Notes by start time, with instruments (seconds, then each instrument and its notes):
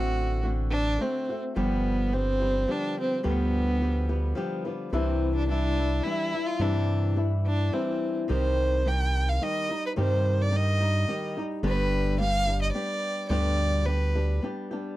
Already playing: analog synth bass A1, nylon-string guitar D3 A3 C4 F#4, violin F#4
0.43 nylon-string guitar D3 A3 C4 F#4
0.70 violin D4
0.99 nylon-string guitar D3 A3 C4 F#4, violin C4
1.29 nylon-string guitar A3 C4 F#4
1.56 analog synth bass G1, nylon-string guitar G2 D3 F3 G3 B3 G4, violin B3
2.12 nylon-string guitar F3 G3 B3 G4, violin C4
2.40 nylon-string guitar F3 G3 B3 G4
2.67 nylon-string guitar F3 G3 B3 G4, violin D4
3.00 violin C4
3.23 analog synth bass D2, nylon-string guitar G2 D3 F3 G3 B3 G4, violin B3
3.80 nylon-string guitar F3 G3 B3 G4
4.09 nylon-string guitar F3 G3 B3 G4
4.35 nylon-string guitar F3 G3 B3 G4
4.65 nylon-string guitar F3 G3 B3 G4
4.92 analog synth bass C2, nylon-string guitar C3 E3 G3 D4 E4, violin C4
5.35 violin D4
5.49 nylon-string guitar E3 G3 D4 E4, violin D4
5.79 nylon-string guitar G3 D4 E4
6.03 nylon-string guitar E3 G3 D4 E4, violin E4
6.34 nylon-string guitar G3 D4 E4
6.46 violin F4
6.60 analog synth bass G2, nylon-string guitar C3 E3 G3 D4 E4, violin D4
7.16 nylon-string guitar E3 G3 D4 E4
7.46 violin D4
7.72 nylon-string guitar E3 G3 D4 E4, violin C4
8.28 analog synth bass C2, nylon-string guitar C3 D#3 G3 D#4 G4, violin C5
8.85 nylon-string guitar D#3 G3 D#4 G4, violin G5
9.29 violin F5
9.41 nylon-string guitar D#3 G3 D#4 G4, violin D#5
9.69 nylon-string guitar G3 D#4 G4
9.86 violin B4
9.96 analog synth bass G2, nylon-string guitar C3 D#3 G3 D#4 G4, violin C5
10.42 violin D5
10.51 nylon-string guitar D#3 G3 D#4 G4
10.56 violin D#5
10.81 nylon-string guitar G3 D#4 G4
11.08 nylon-string guitar D#3 G3 D#4 G4
11.37 nylon-string guitar G3 D#4 G4
11.63 analog synth bass G1, nylon-string guitar G2 D3 G3 B3 D4 G4
11.67 violin B4
12.19 nylon-string guitar G3 B3 D4 G4, violin F5
12.47 nylon-string guitar G3 B3 D4 G4
12.62 violin D#5
12.72 nylon-string guitar G3 B3 D4 G4, violin D5
13.29 analog synth bass D2, nylon-string guitar G2 D3 G3 B3 D4 G4, violin D5
13.85 nylon-string guitar G3 B3 D4 G4, violin B4
14.15 nylon-string guitar G3 B3 D4 G4
14.42 nylon-string guitar G3 B3 D4 G4
14.71 nylon-string guitar G3 B3 D4 G4